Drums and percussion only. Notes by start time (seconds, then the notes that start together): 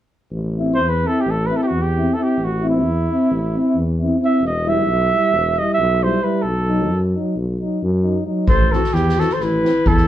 8.48 kick
8.73 snare
8.84 snare
8.95 snare
9.09 snare
9.20 snare
9.29 snare
9.40 snare
9.65 snare
9.86 kick
9.97 snare